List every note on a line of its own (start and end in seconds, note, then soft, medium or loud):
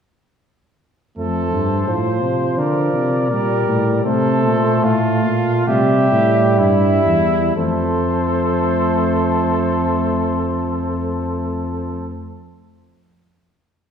1.17 1.50 F2 medium
1.17 1.90 A3 medium
1.17 1.84 A4 medium
1.17 2.59 C5 medium
1.52 1.86 G2 medium
1.87 2.23 A2 medium
1.87 3.31 F3 medium
1.87 2.60 C5 medium
2.22 2.57 C3 medium
2.57 2.93 D3 medium
2.57 3.30 A#4 medium
2.57 4.04 D5 medium
2.93 3.31 C3 medium
3.30 3.66 A#2 medium
3.30 4.04 G3 medium
3.30 4.03 A#4 medium
3.66 4.04 A2 medium
4.04 4.45 C3 medium
4.04 5.65 A3 medium
4.04 4.86 A4 medium
4.04 4.86 C5 medium
4.43 4.82 A#2 medium
4.83 5.26 A2 medium
4.83 5.69 F4 medium
4.83 5.70 F5 medium
5.25 5.67 A#2 medium
5.67 6.11 C3 medium
5.67 7.52 G3 medium
5.67 6.60 G4 medium
5.67 6.58 E5 medium
6.11 6.59 A2 medium
6.57 7.05 G2 medium
6.57 7.55 E4 medium
6.57 7.55 E5 medium
7.05 7.55 E2 medium
7.55 12.16 F2 medium
7.55 12.17 A3 medium
7.55 12.17 A4 medium
7.55 12.17 C5 medium